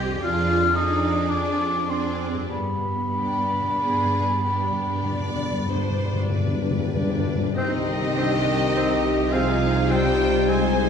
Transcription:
Already playing: double bass section C2, harp C3 D#4 G4 C5, viola section C4, violin section G4 D#5, cello section G4
0.04 harp F2
0.08 harp D4
0.12 harp G#4
0.17 harp D5
0.22 double bass section F2, viola section D4, cello section F4, violin section G#4 D5, flute F6
0.74 viola section D4, cello section D#4, violin section G#4 D5, flute D#6
1.30 double bass section F2, cello section D4, flute D6
1.88 cello section C4, viola section D4, violin section G#4 D5, flute C6
2.33 harp G2
2.38 harp D4
2.42 harp G4
2.46 harp D5, flute B5
2.51 double bass section G2, timpani G2, cello section B3
2.61 timpani G2
2.69 timpani G2
2.77 timpani G2
2.84 timpani G2
2.93 timpani G2
3.02 timpani G2
3.10 timpani G2
3.15 viola section D4, violin section G4 D5
3.20 timpani G2
3.28 timpani G2
3.36 timpani G2
3.45 timpani G2
3.53 timpani G2
3.62 timpani G2
3.70 timpani G2
3.78 timpani G2, violin section G#4
3.82 double bass section G2
3.87 timpani G2
3.96 timpani G2
4.03 timpani G2
4.11 timpani G2
4.20 timpani G2
4.29 timpani G2
4.37 timpani G2
4.45 timpani G2, viola section D4, violin section G4 D5
4.55 timpani G2
4.63 timpani G2
4.71 timpani G2
4.79 timpani G2
4.87 timpani G2
4.95 timpani G2
5.03 timpani G2
5.08 double bass section G2, violin section D5
5.12 timpani G2
5.20 timpani G2
5.28 timpani G2
5.36 timpani G2
5.43 timpani G2
5.51 timpani G2
5.58 timpani G2
5.65 timpani G2, viola section D4, violin section D5
5.70 violin section C5
5.75 timpani G2
5.82 timpani G2
5.90 timpani G2
5.97 timpani G2
6.05 timpani G2
6.13 timpani G2
6.22 timpani G2
6.30 timpani G2, double bass section G2, violin section B4
6.38 timpani G2
6.46 timpani G2
6.54 timpani G2
6.61 timpani G2
6.70 timpani G2
6.79 timpani G2
6.87 timpani G2
6.93 timpani G2, viola section D4, violin section D5
7.02 timpani G2
7.11 timpani G2
7.18 timpani G2
7.27 timpani G2
7.35 timpani G2
7.43 timpani G2
7.55 double bass section C2, cello section C3, harp C3, french horn section D#3, viola section C4 D#4, bassoon C4, violin section G4 D#5, clarinet C5, oboe D#5, flute G6
7.86 harp D#4
8.16 bassoon C4, viola section D4, harp G4, clarinet C5, flute G6
8.75 bassoon C4, viola section D#4 G4, clarinet C5, harp G5, flute G6
9.05 harp C6
9.32 french horn section F3, bassoon C4, viola section F4, violin section G#4 F5, clarinet C5, oboe F5, harp G5, flute G6
9.61 harp D#5
9.90 harp G3, french horn section G3, bassoon C4, violin section C5 G5, clarinet C5, oboe G5, flute G6
10.20 harp D#4
10.48 french horn section G#3, bassoon C4, harp G4, violin section C5 G#5, clarinet C5, oboe G#5, flute G6
10.77 harp D#5

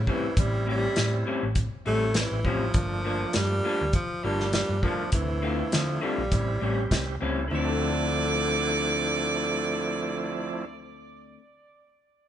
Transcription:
0.07 clean electric guitar A2 G3 C4 C#4, tenor saxophone E3, tonewheel organ G3 C4 C#4 E4, kick
0.23 muted fingered electric bass stroke
0.37 fingered electric bass A1, tonewheel organ G3 C4 C#4 E4, tenor saxophone G3, kick, closed hi-hat
0.66 clean electric guitar A2 G3 C4 C#4, tenor saxophone G3
0.96 fingered electric bass A2, snare, closed hi-hat
1.26 clean electric guitar A2 G3 C4 C#4
1.43 fingered electric bass A1
1.55 kick, closed hi-hat
1.86 fingered electric bass A1, clean electric guitar A2 G3 C4 C#4, tonewheel organ G3 C4 C#4 E4, tenor saxophone A3
2.14 tenor saxophone E3, snare, closed hi-hat
2.32 fingered electric bass A1
2.45 clean electric guitar A2 G3 C4 C#4, tenor saxophone F3, tonewheel organ G3 C4 C#4 E4, kick
2.74 fingered electric bass G1, tonewheel organ F3 A3 A#3 D4, kick, closed hi-hat
3.05 clean electric guitar G2 F3 A#3 D4
3.33 fingered electric bass G2, tenor saxophone G3, snare, closed hi-hat
3.64 clean electric guitar G2 F3 A#3 D4
3.81 fingered electric bass D2
3.93 tenor saxophone F3, kick, closed hi-hat
4.11 muted fingered electric bass stroke
4.24 fingered electric bass G1, clean electric guitar G2 F3 A#3 D4, tonewheel organ F3 A3 A#3 D4, tenor saxophone G3
4.40 snare
4.53 tenor saxophone G3, snare, closed hi-hat
4.69 fingered electric bass G2
4.83 clean electric guitar G2 F3 A#3 D4, tenor saxophone F3, tonewheel organ F3 A3 A#3 D4, kick
4.99 muted fingered electric bass stroke
5.12 fingered electric bass D2, tonewheel organ D3 A3 C4 E4, tenor saxophone E3, kick, closed hi-hat
5.42 clean electric guitar D3 A3 C4 F4
5.72 fingered electric bass D3, tenor saxophone F3, snare, closed hi-hat
6.01 clean electric guitar D3 A3 C4 F4, tenor saxophone G3
6.18 fingered electric bass A#1
6.32 fingered electric bass A1, tonewheel organ G3 C4 C#4 E4, kick, closed hi-hat
6.60 fingered electric bass A1, clean electric guitar A2 G3 C4 C#4, tonewheel organ G3 C4 C#4 G4
6.91 fingered electric bass C2, kick, snare, closed hi-hat
7.21 fingered electric bass C#2, clean electric guitar A2 G3 C4 C#4, tonewheel organ G3 C4 C#4 E4
7.48 fingered electric bass D2, clean electric guitar D3 A3, tenor saxophone D3, tonewheel organ F3 A3 C4 E4
7.54 clean electric guitar C4, harmonica D5

